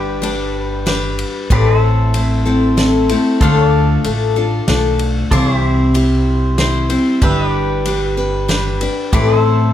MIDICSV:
0, 0, Header, 1, 5, 480
1, 0, Start_track
1, 0, Tempo, 635795
1, 1132, Time_signature, 3, 2, 24, 8
1, 7348, End_track
2, 0, Start_track
2, 0, Title_t, "Pedal steel guitar"
2, 0, Program_c, 0, 26
2, 0, Note_on_c, 0, 67, 61
2, 0, Note_on_c, 0, 71, 57
2, 0, Note_on_c, 0, 74, 62
2, 1120, Note_off_c, 0, 67, 0
2, 1120, Note_off_c, 0, 71, 0
2, 1128, Note_off_c, 0, 74, 0
2, 1149, Note_on_c, 0, 67, 65
2, 1154, Note_on_c, 0, 71, 63
2, 1169, Note_on_c, 0, 74, 64
2, 1305, Note_off_c, 0, 71, 0
2, 1305, Note_on_c, 0, 72, 63
2, 1337, Note_off_c, 0, 67, 0
2, 1337, Note_on_c, 0, 69, 65
2, 1358, Note_off_c, 0, 74, 0
2, 1358, Note_on_c, 0, 76, 64
2, 2566, Note_off_c, 0, 69, 0
2, 2569, Note_off_c, 0, 72, 0
2, 2576, Note_off_c, 0, 76, 0
2, 2576, Note_on_c, 0, 69, 64
2, 2583, Note_on_c, 0, 72, 63
2, 2585, Note_on_c, 0, 77, 63
2, 2771, Note_off_c, 0, 72, 0
2, 2771, Note_on_c, 0, 74, 63
2, 4000, Note_off_c, 0, 69, 0
2, 4003, Note_off_c, 0, 74, 0
2, 4003, Note_off_c, 0, 77, 0
2, 4012, Note_on_c, 0, 69, 64
2, 4017, Note_on_c, 0, 74, 64
2, 4027, Note_on_c, 0, 77, 60
2, 4178, Note_off_c, 0, 77, 0
2, 4178, Note_on_c, 0, 76, 60
2, 4201, Note_off_c, 0, 69, 0
2, 4201, Note_on_c, 0, 67, 64
2, 4206, Note_off_c, 0, 74, 0
2, 4206, Note_on_c, 0, 72, 64
2, 5437, Note_off_c, 0, 67, 0
2, 5440, Note_off_c, 0, 72, 0
2, 5445, Note_off_c, 0, 76, 0
2, 5460, Note_on_c, 0, 67, 64
2, 5465, Note_on_c, 0, 71, 61
2, 5473, Note_on_c, 0, 76, 62
2, 5661, Note_off_c, 0, 76, 0
2, 5661, Note_on_c, 0, 74, 62
2, 6882, Note_off_c, 0, 67, 0
2, 6884, Note_off_c, 0, 71, 0
2, 6888, Note_off_c, 0, 74, 0
2, 6892, Note_on_c, 0, 67, 66
2, 6899, Note_on_c, 0, 71, 66
2, 6909, Note_on_c, 0, 74, 66
2, 7050, Note_off_c, 0, 71, 0
2, 7050, Note_on_c, 0, 72, 66
2, 7081, Note_off_c, 0, 67, 0
2, 7081, Note_on_c, 0, 69, 66
2, 7097, Note_off_c, 0, 74, 0
2, 7097, Note_on_c, 0, 76, 66
2, 7348, Note_off_c, 0, 69, 0
2, 7348, Note_off_c, 0, 72, 0
2, 7348, Note_off_c, 0, 76, 0
2, 7348, End_track
3, 0, Start_track
3, 0, Title_t, "Steel-string acoustic guitar"
3, 0, Program_c, 1, 25
3, 0, Note_on_c, 1, 55, 78
3, 0, Note_on_c, 1, 62, 89
3, 0, Note_on_c, 1, 67, 89
3, 0, Note_on_c, 1, 71, 88
3, 155, Note_off_c, 1, 55, 0
3, 164, Note_off_c, 1, 62, 0
3, 164, Note_on_c, 1, 55, 70
3, 168, Note_off_c, 1, 67, 0
3, 173, Note_on_c, 1, 62, 68
3, 176, Note_off_c, 1, 71, 0
3, 177, Note_on_c, 1, 67, 71
3, 184, Note_on_c, 1, 71, 64
3, 639, Note_off_c, 1, 55, 0
3, 644, Note_off_c, 1, 62, 0
3, 647, Note_off_c, 1, 67, 0
3, 648, Note_on_c, 1, 55, 57
3, 652, Note_off_c, 1, 71, 0
3, 653, Note_on_c, 1, 62, 66
3, 657, Note_on_c, 1, 67, 69
3, 661, Note_on_c, 1, 71, 71
3, 1130, Note_off_c, 1, 55, 0
3, 1132, Note_off_c, 1, 62, 0
3, 1134, Note_off_c, 1, 67, 0
3, 1135, Note_on_c, 1, 45, 80
3, 1136, Note_off_c, 1, 71, 0
3, 1136, Note_on_c, 1, 52, 78
3, 1137, Note_on_c, 1, 57, 80
3, 1142, Note_on_c, 1, 64, 93
3, 1143, Note_on_c, 1, 60, 85
3, 1144, Note_on_c, 1, 69, 87
3, 1612, Note_off_c, 1, 57, 0
3, 1613, Note_off_c, 1, 45, 0
3, 1614, Note_off_c, 1, 52, 0
3, 1615, Note_off_c, 1, 60, 0
3, 1615, Note_on_c, 1, 57, 63
3, 1617, Note_off_c, 1, 64, 0
3, 1624, Note_on_c, 1, 60, 64
3, 1626, Note_on_c, 1, 64, 70
3, 1627, Note_off_c, 1, 69, 0
3, 1630, Note_on_c, 1, 69, 66
3, 1844, Note_off_c, 1, 69, 0
3, 1849, Note_off_c, 1, 64, 0
3, 1852, Note_off_c, 1, 60, 0
3, 1853, Note_off_c, 1, 57, 0
3, 1853, Note_on_c, 1, 69, 53
3, 1858, Note_on_c, 1, 64, 51
3, 1862, Note_on_c, 1, 60, 55
3, 1868, Note_on_c, 1, 57, 46
3, 2083, Note_off_c, 1, 57, 0
3, 2088, Note_off_c, 1, 60, 0
3, 2092, Note_on_c, 1, 57, 67
3, 2093, Note_off_c, 1, 69, 0
3, 2095, Note_off_c, 1, 64, 0
3, 2098, Note_on_c, 1, 60, 68
3, 2105, Note_on_c, 1, 64, 65
3, 2105, Note_on_c, 1, 69, 72
3, 2328, Note_off_c, 1, 69, 0
3, 2332, Note_off_c, 1, 57, 0
3, 2335, Note_off_c, 1, 60, 0
3, 2335, Note_off_c, 1, 64, 0
3, 2338, Note_on_c, 1, 69, 56
3, 2344, Note_on_c, 1, 64, 52
3, 2352, Note_on_c, 1, 60, 52
3, 2354, Note_on_c, 1, 57, 43
3, 2573, Note_off_c, 1, 57, 0
3, 2575, Note_off_c, 1, 69, 0
3, 2578, Note_off_c, 1, 64, 0
3, 2582, Note_off_c, 1, 60, 0
3, 2582, Note_on_c, 1, 57, 83
3, 2583, Note_on_c, 1, 50, 80
3, 2586, Note_on_c, 1, 62, 92
3, 2589, Note_on_c, 1, 65, 85
3, 2592, Note_on_c, 1, 69, 88
3, 3045, Note_off_c, 1, 57, 0
3, 3051, Note_off_c, 1, 62, 0
3, 3054, Note_on_c, 1, 57, 64
3, 3055, Note_off_c, 1, 65, 0
3, 3057, Note_off_c, 1, 50, 0
3, 3060, Note_on_c, 1, 62, 64
3, 3062, Note_off_c, 1, 69, 0
3, 3064, Note_on_c, 1, 65, 69
3, 3070, Note_on_c, 1, 69, 68
3, 3283, Note_off_c, 1, 69, 0
3, 3290, Note_off_c, 1, 65, 0
3, 3292, Note_on_c, 1, 69, 62
3, 3293, Note_off_c, 1, 57, 0
3, 3296, Note_off_c, 1, 62, 0
3, 3299, Note_on_c, 1, 65, 58
3, 3307, Note_on_c, 1, 62, 49
3, 3526, Note_off_c, 1, 62, 0
3, 3531, Note_on_c, 1, 57, 62
3, 3532, Note_off_c, 1, 69, 0
3, 3533, Note_off_c, 1, 65, 0
3, 3535, Note_on_c, 1, 62, 72
3, 3542, Note_on_c, 1, 65, 69
3, 3545, Note_on_c, 1, 69, 65
3, 4011, Note_off_c, 1, 57, 0
3, 4014, Note_off_c, 1, 62, 0
3, 4015, Note_on_c, 1, 48, 81
3, 4016, Note_on_c, 1, 52, 83
3, 4017, Note_off_c, 1, 65, 0
3, 4019, Note_off_c, 1, 69, 0
3, 4020, Note_on_c, 1, 60, 86
3, 4021, Note_on_c, 1, 55, 97
3, 4022, Note_on_c, 1, 64, 89
3, 4024, Note_on_c, 1, 72, 88
3, 4484, Note_off_c, 1, 55, 0
3, 4485, Note_off_c, 1, 60, 0
3, 4487, Note_on_c, 1, 55, 69
3, 4491, Note_off_c, 1, 64, 0
3, 4494, Note_off_c, 1, 48, 0
3, 4494, Note_off_c, 1, 52, 0
3, 4494, Note_off_c, 1, 72, 0
3, 4494, Note_on_c, 1, 60, 74
3, 4500, Note_on_c, 1, 64, 62
3, 4503, Note_on_c, 1, 72, 67
3, 4961, Note_off_c, 1, 55, 0
3, 4964, Note_off_c, 1, 60, 0
3, 4966, Note_off_c, 1, 64, 0
3, 4970, Note_on_c, 1, 55, 64
3, 4973, Note_off_c, 1, 72, 0
3, 4973, Note_on_c, 1, 60, 64
3, 4975, Note_on_c, 1, 64, 67
3, 4982, Note_on_c, 1, 72, 69
3, 5196, Note_off_c, 1, 72, 0
3, 5201, Note_off_c, 1, 64, 0
3, 5205, Note_on_c, 1, 72, 49
3, 5208, Note_off_c, 1, 60, 0
3, 5209, Note_off_c, 1, 55, 0
3, 5210, Note_on_c, 1, 64, 48
3, 5217, Note_on_c, 1, 60, 45
3, 5218, Note_on_c, 1, 55, 44
3, 5438, Note_off_c, 1, 55, 0
3, 5447, Note_on_c, 1, 55, 83
3, 5448, Note_off_c, 1, 72, 0
3, 5450, Note_off_c, 1, 60, 0
3, 5451, Note_off_c, 1, 64, 0
3, 5453, Note_on_c, 1, 62, 85
3, 5458, Note_on_c, 1, 67, 82
3, 5461, Note_on_c, 1, 71, 88
3, 5921, Note_off_c, 1, 55, 0
3, 5930, Note_off_c, 1, 62, 0
3, 5931, Note_on_c, 1, 55, 66
3, 5935, Note_off_c, 1, 67, 0
3, 5936, Note_off_c, 1, 71, 0
3, 5939, Note_on_c, 1, 62, 64
3, 5944, Note_on_c, 1, 67, 74
3, 5946, Note_on_c, 1, 71, 70
3, 6161, Note_off_c, 1, 71, 0
3, 6167, Note_off_c, 1, 67, 0
3, 6170, Note_on_c, 1, 71, 55
3, 6171, Note_off_c, 1, 55, 0
3, 6175, Note_off_c, 1, 62, 0
3, 6176, Note_on_c, 1, 67, 50
3, 6185, Note_on_c, 1, 62, 48
3, 6402, Note_off_c, 1, 62, 0
3, 6405, Note_on_c, 1, 55, 68
3, 6406, Note_off_c, 1, 67, 0
3, 6411, Note_off_c, 1, 71, 0
3, 6411, Note_on_c, 1, 62, 70
3, 6415, Note_on_c, 1, 67, 72
3, 6420, Note_on_c, 1, 71, 65
3, 6640, Note_off_c, 1, 71, 0
3, 6647, Note_off_c, 1, 67, 0
3, 6648, Note_off_c, 1, 55, 0
3, 6649, Note_on_c, 1, 71, 52
3, 6652, Note_off_c, 1, 62, 0
3, 6656, Note_on_c, 1, 67, 49
3, 6663, Note_on_c, 1, 62, 45
3, 6890, Note_on_c, 1, 45, 81
3, 6891, Note_off_c, 1, 71, 0
3, 6894, Note_off_c, 1, 67, 0
3, 6894, Note_on_c, 1, 57, 97
3, 6895, Note_off_c, 1, 62, 0
3, 6895, Note_on_c, 1, 52, 85
3, 6898, Note_on_c, 1, 60, 85
3, 6901, Note_on_c, 1, 64, 92
3, 6902, Note_on_c, 1, 69, 89
3, 7348, Note_off_c, 1, 45, 0
3, 7348, Note_off_c, 1, 52, 0
3, 7348, Note_off_c, 1, 57, 0
3, 7348, Note_off_c, 1, 60, 0
3, 7348, Note_off_c, 1, 64, 0
3, 7348, Note_off_c, 1, 69, 0
3, 7348, End_track
4, 0, Start_track
4, 0, Title_t, "Upright bass"
4, 0, Program_c, 2, 32
4, 0, Note_on_c, 2, 31, 81
4, 925, Note_off_c, 2, 31, 0
4, 1134, Note_on_c, 2, 33, 92
4, 2366, Note_off_c, 2, 33, 0
4, 2573, Note_on_c, 2, 38, 93
4, 2983, Note_off_c, 2, 38, 0
4, 3058, Note_on_c, 2, 33, 81
4, 3463, Note_off_c, 2, 33, 0
4, 3532, Note_on_c, 2, 35, 82
4, 3940, Note_off_c, 2, 35, 0
4, 4012, Note_on_c, 2, 36, 93
4, 5245, Note_off_c, 2, 36, 0
4, 5451, Note_on_c, 2, 31, 88
4, 6684, Note_off_c, 2, 31, 0
4, 6891, Note_on_c, 2, 33, 90
4, 7348, Note_off_c, 2, 33, 0
4, 7348, End_track
5, 0, Start_track
5, 0, Title_t, "Drums"
5, 176, Note_on_c, 9, 51, 57
5, 251, Note_off_c, 9, 51, 0
5, 653, Note_on_c, 9, 38, 69
5, 653, Note_on_c, 9, 51, 58
5, 728, Note_off_c, 9, 38, 0
5, 728, Note_off_c, 9, 51, 0
5, 895, Note_on_c, 9, 51, 54
5, 971, Note_off_c, 9, 51, 0
5, 1134, Note_on_c, 9, 36, 99
5, 1136, Note_on_c, 9, 51, 47
5, 1210, Note_off_c, 9, 36, 0
5, 1212, Note_off_c, 9, 51, 0
5, 1615, Note_on_c, 9, 51, 53
5, 1691, Note_off_c, 9, 51, 0
5, 2095, Note_on_c, 9, 38, 76
5, 2095, Note_on_c, 9, 51, 53
5, 2171, Note_off_c, 9, 38, 0
5, 2171, Note_off_c, 9, 51, 0
5, 2335, Note_on_c, 9, 51, 59
5, 2411, Note_off_c, 9, 51, 0
5, 2573, Note_on_c, 9, 36, 99
5, 2573, Note_on_c, 9, 51, 54
5, 2648, Note_off_c, 9, 36, 0
5, 2648, Note_off_c, 9, 51, 0
5, 3053, Note_on_c, 9, 51, 57
5, 3128, Note_off_c, 9, 51, 0
5, 3531, Note_on_c, 9, 38, 73
5, 3531, Note_on_c, 9, 51, 54
5, 3606, Note_off_c, 9, 38, 0
5, 3606, Note_off_c, 9, 51, 0
5, 3769, Note_on_c, 9, 51, 54
5, 3845, Note_off_c, 9, 51, 0
5, 4011, Note_on_c, 9, 36, 87
5, 4012, Note_on_c, 9, 51, 56
5, 4086, Note_off_c, 9, 36, 0
5, 4088, Note_off_c, 9, 51, 0
5, 4491, Note_on_c, 9, 51, 53
5, 4566, Note_off_c, 9, 51, 0
5, 4968, Note_on_c, 9, 38, 79
5, 4968, Note_on_c, 9, 51, 51
5, 5043, Note_off_c, 9, 38, 0
5, 5043, Note_off_c, 9, 51, 0
5, 5207, Note_on_c, 9, 51, 52
5, 5283, Note_off_c, 9, 51, 0
5, 5448, Note_on_c, 9, 51, 50
5, 5449, Note_on_c, 9, 36, 97
5, 5524, Note_off_c, 9, 51, 0
5, 5525, Note_off_c, 9, 36, 0
5, 5930, Note_on_c, 9, 51, 59
5, 6005, Note_off_c, 9, 51, 0
5, 6409, Note_on_c, 9, 38, 76
5, 6409, Note_on_c, 9, 51, 51
5, 6485, Note_off_c, 9, 38, 0
5, 6485, Note_off_c, 9, 51, 0
5, 6650, Note_on_c, 9, 51, 53
5, 6725, Note_off_c, 9, 51, 0
5, 6891, Note_on_c, 9, 36, 97
5, 6891, Note_on_c, 9, 51, 55
5, 6967, Note_off_c, 9, 36, 0
5, 6967, Note_off_c, 9, 51, 0
5, 7348, End_track
0, 0, End_of_file